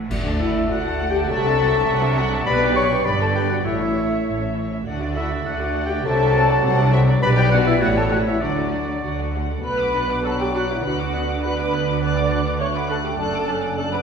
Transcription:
0.10 D2 A3 F#4 D5 F#5, concert bass drum, crash
0.25 D4 A4 A5
0.40 A3 E4 F#4 E5 F#5
0.55 D4 A4 A5
0.70 D2 A3 F#4 F#5
0.85 D4 A4 A5
1.00 A3 F#4 F#5
1.10 G4 G5
1.15 D4 A4 A5
1.29 C2 C3 F#3 C4 F#4 A4 E5 F#5 A5
1.44 D4 A4 A5
1.59 C4 F#4 F#5
1.74 D4 A4 A5
1.88 C2 C3 C4 F#4 F#5
2.02 D4 A4 A5
2.17 C4 F#4 F#5
2.31 D4 A4 A5
2.46 B1 B2 G3 B3 G4 B4 D5 B5
2.61 D4 B4 G5
2.76 B3 G4 C#5 B5 C#6
2.91 D4 B4 G5
3.05 G1 G2 G3 B3 B4 D5 B5
3.20 D4 A4 D5 G5 A5
3.35 B3 G4 B4 G5 B5
3.49 D4 F#4 D5 F#5 G5
3.65 A1 A2 A3 E4 A4 C#5 E5
3.80 C#4 C#5 E5
3.96 E4 A4 C#5
4.11 C#4 C#5 E5
4.26 A1 A2 E4 A4 C#5
4.40 C#4 C#5 E5
4.56 E4 A4 C#5
4.70 C#4 C#5 E5
4.85 D2 D3 A3 F#4 A4 D5 F#5
5.00 D4 F#4 D5
5.15 E4 F#4 A4 E5 F#5
5.30 D4 F#4 D5
5.45 D2 D3 F#4 A4 D5 F#5
5.60 D4 F#4 D5
5.75 F#4 A4 F#5
5.85 G4 G5
5.90 D4 F#4 D5
6.05 C2 C3 F#3 C4 F#4 A4 C5 E5 A5
6.20 D4 A4 D5
6.34 C4 F#4 C5 D5
6.49 D4 A4 D5
6.63 C2 C3 C4 F#4 C5 F#5
6.79 D4 A4 D5
6.93 C4 F#4 C5 E5
7.08 D4 A4 D5
7.22 B1 B2 G3 D4 G4 B4 D5 B5
7.37 B3 G4 B4 D5 G5
7.52 D4 F#4 G4 B4 F#5
7.67 B3 E4 B4 D5 E5
7.81 A1 A2 A3 F#4 G4 B4 C#5 F#5
7.97 B3 F#4 A4 C#5 A5
8.11 A3 F#4 G4 B4 F#5
8.27 B3 E4 F#4 C#5 E5
8.41 D2 D3 F#3 D4 F#4 D5 F#5
8.57 A3 A4 D5
8.73 F#3 F#4 F#5
8.88 A3 A4 D5
9.03 D2 D3 F#3 F#4 F#5
9.18 A3 A4 D5
9.34 F#3 F#4 F#5
9.49 A3 A4 D5
9.63 B1 B2 D4 F#4 B4 D5 B5 F#6
9.79 F#5 D6
9.93 D4 D5 F#5 B5 F#6
10.09 F#5 D6
10.24 F#3 A4 D5 A5 B5 F#6
10.39 G4 F#5 G5 D6
10.54 D4 F#4 D5 F#5 B5 F#6
10.69 E4 E5 F#5 D6
10.84 D2 D3 B3 F#4 D5 F#5 B5 F#6
10.99 F#5 D6
11.13 B3 D4 D5 F#5 B5 F#6
11.29 F#5 D6
11.42 B4 D5 B5 F#6
11.58 F#5 D6
11.71 B3 D5 F#5 B5 F#6
11.87 F#5 D6
12.00 A3 B3 F#4 D5 A5 D6 F#6
12.16 F#5 D6
12.30 D4 D5 F#5 A5 F#6
12.45 F#5 D6
12.60 A3 C#5 D5 A5 C#6 F#6
12.74 B4 F#5 B5 D6
12.89 D4 A4 D5 F#5 A5 F#6
13.04 G4 F#5 G5 D6
13.18 F#1 F#2 D4 A4 D5 A5 F#6
13.33 F#5 D6
13.47 C#4 D4 D5 A5 F#6
13.62 F#5 D6
13.77 D4 A4 D5 A5 F#6
13.91 B4 F#5 B5 D6

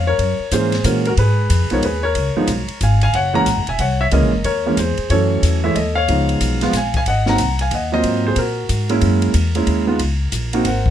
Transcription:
Already playing: F2
0.07 A#4 C#5
0.18 F#2, kick, ride
0.39 muted upright bass stroke
0.51 G#2 E3 G#3 A#3 C#4 G#4 C5, kick, hi-hat pedal, ride
0.72 snare, ride
0.84 A#2 E3 G#3 A#3 C#4 F#4 A#4, kick, hi-hat pedal, ride
1.05 F#4 A#4, ride
1.17 G#2 G#4 B4, kick, ride
1.50 F2, kick, hi-hat pedal, ride
1.61 C#2
1.70 B1 F3 G#3 B3 D#4 C#5, ride
1.74 A#4
1.83 D#2 G#4 B4, kick, ride
2.03 A#4 C#5
2.15 C#2, kick, ride
2.36 F3 G#3 B3 D#4, muted upright bass stroke
2.47 B1, kick, hi-hat pedal, ride
2.68 muted upright bass stroke, ride
2.81 G#1 F5 G#5, kick, hi-hat pedal, ride
3.01 F5 G#5, ride
3.13 F#1 C#5 F#5, kick, ride
3.34 E3 G#3 A#3 C#4 F#5 A#5
3.46 A#1, kick, hi-hat pedal, ride
3.56 F#1
3.67 E1 E5 G#5, ride
3.79 C2 C#5 F#5, kick, ride
4.01 C#5 E5
4.11 C#2 E3 G#3 A#3 C#4 A#4 D#5, kick, ride
4.22 A#1
4.33 F#1
4.44 D#2 A#4 C#5, kick, ride
4.66 E3 G#3 A#3 C#4
4.77 E2 G#4 C5, kick, hi-hat pedal, ride
4.97 muted upright bass stroke, ride
5.10 F#2 E3 F#3 A3 C#4 A4 C#5, kick, ride
5.43 E2, kick, hi-hat pedal, ride
5.64 E3 G#3 A3 E4 C#5 E5
5.75 D#2 A4 D#5, kick, ride
5.95 C#5 F5
6.08 C#2 F3 G#3 B3 D#4, kick, ride
6.29 ride
6.41 B1, kick, hi-hat pedal, ride
6.61 F3 G#3 B3 F4, snare, ride
6.73 A#1 G#5, kick, snare, hi-hat pedal, ride
6.78 F5
6.94 G#5, kick, ride
6.98 F5
7.06 G#1 D#5 F#5, kick, ride
7.26 F#3 A#3 C4 D#4 F#5 A#5, snare
7.38 C2, kick, hi-hat pedal, ride
7.59 F5 G#5, ride
7.71 D#2 F#5, kick, ride
7.75 D#5
7.92 F#3 A#3 C4 F4 C5 D#5
8.04 G#2, kick, ride
8.27 G#4 C5
8.36 A#2 A#4, kick, ride
8.40 F#4
8.69 G#2, kick, hi-hat pedal, ride
8.89 G#3 A#3 C#4 E4, ride
9.01 F#2, kick, ride
9.22 ride
9.34 E2, kick, hi-hat pedal, ride
9.55 G#3 A#3 C#4 E4, ride
9.67 D#2, kick, ride
9.87 G#3 B3 D#4 F4
9.99 C#2, kick, ride
10.32 A#1, kick, hi-hat pedal, ride
10.53 A#3 C4 D#4 F#4, ride
10.65 G#1 A#4 C5 F#5, kick, ride
10.86 kick

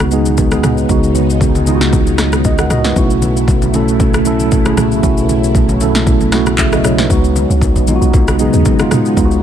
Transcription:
Already playing: C#2 C#3 F#3 G#3 B3 D#4 F#4
0.00 cross-stick, high conga, shaker
0.11 G#3 B3 D#4 G#4, shaker
0.26 high conga, shaker
0.37 kick, low conga, shaker
0.51 G#3 B3 D#4 G#4, cross-stick, high conga, shaker
0.63 cross-stick, mid tom, low conga, shaker
0.78 shaker
0.89 C#2 G#3 B3 D#4 F#4, kick, shaker
1.03 shaker
1.15 high conga, shaker
1.30 shaker
1.41 kick, low conga, shaker
1.55 high conga, shaker
1.67 G#3 B3 D#4 F4, high conga, shaker
1.75 F#4
1.81 snare, shaker
1.93 kick, low conga, shaker
2.07 high conga, shaker
2.18 cross-stick, snare, shaker
2.32 cross-stick, high conga, shaker
2.44 D#5, kick, low conga, shaker
2.58 A#4 F#5, cross-stick, high conga, shaker
2.70 F#4 D#5, cross-stick, mid tom, low conga, shaker
2.84 D#4 B4, snare, shaker
2.96 B1 C#3 A3 B3 C#4 E4 F#4, kick, shaker
3.10 shaker
3.22 high conga, shaker
3.37 shaker
3.48 kick, low conga, shaker
3.62 high conga, shaker
3.74 A3 C#4 E4 A4, high conga, shaker
3.88 shaker
4.00 kick, low conga, shaker
4.14 cross-stick, high conga, shaker
4.25 A3 C#4 E4 A4, shaker
4.40 high conga, shaker
4.51 kick, low conga, shaker
4.65 A3 C#4 E4 G#4, cross-stick, high conga, shaker
4.77 cross-stick, mid tom, low conga, shaker
4.92 shaker
5.03 B1 A3 C#4 E4 F#4, kick, shaker
5.17 shaker
5.29 high conga, shaker
5.44 shaker
5.55 kick, low conga, shaker
5.69 high conga, shaker
5.80 A3 C#4 E4 A4, high conga, shaker
5.95 snare, shaker
6.07 kick, low conga, shaker
6.21 high conga, shaker
6.32 A3 C#4 E4 F#4, cross-stick, snare, shaker
6.46 cross-stick, high conga, shaker
6.58 G#4 E5, kick, clap, low conga, shaker
6.72 F#4 D#5, cross-stick, high conga, shaker
6.84 E4 C#5, cross-stick, low conga, shaker
6.98 D#4 B4, snare, shaker
7.10 C#2 G#3 B3 D#4 F#4, kick, shaker
7.24 shaker
7.36 high conga, shaker
7.50 C#2, shaker
7.61 kick, low conga, shaker
7.76 A#1, high conga, shaker
7.87 G#3 B3 D#4 F4, high conga, shaker
7.96 F#4
8.02 B1, shaker
8.13 B1, kick, low conga, shaker
8.28 cross-stick, high conga, shaker
8.39 G#3 B3 D#4 G#4, shaker
8.53 D#2, high conga, shaker
8.65 kick, low conga, shaker
8.79 G#3 B3 D#4 F4, cross-stick, high conga, shaker
8.91 cross-stick, mid tom, low conga, shaker
9.05 shaker
9.17 C#2 G#3 B3 D#4 F4, kick, shaker
9.25 F#4
9.31 shaker

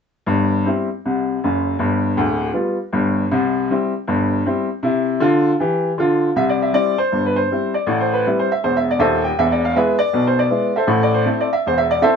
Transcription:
0.26 G1 G2
0.65 G3 C4 E4
1.05 C2 C3
1.44 F#1 F#2
1.79 G1 G2
2.17 D1 D2
2.53 G3 B3 F4
2.93 G1 G2
3.31 C2 C3
3.70 G3 C4 E4
4.08 G1 G2
4.45 G3 C4 E4
4.83 C3 E4
5.20 D3 F4
5.60 E3 G4
5.98 D3 F4
6.36 C2 C3 E5
6.49 D5
6.62 E5
6.73 G3 C4 E4 D5
6.98 C5
7.12 G1 G2
7.26 B4
7.36 C5
7.51 G3 C4 E4
7.74 D5
7.87 A1 A2
8.01 C5
8.13 B4
8.26 G3 C4 E4
8.39 C5
8.52 E5
8.63 E1 E2 C5
8.77 E5
8.91 D5
8.99 D#1 D#2 A4 C5 E5
9.24 G5
9.39 E1 E2 E5
9.52 D5
9.65 F5
9.76 G#3 B3 E4 G#4 B4 E5
9.99 D5
10.13 B1 B2
10.27 C5
10.39 D5
10.50 G#3 B3 E4
10.76 A4 C5 E5
10.87 A1 A2
11.03 D5
11.14 C5
11.26 A3 C4 E4
11.41 D5
11.53 E5
11.66 E1 E2 C5
11.78 E5
11.91 D5
12.02 A3 C4 E4 A4 C5 E5

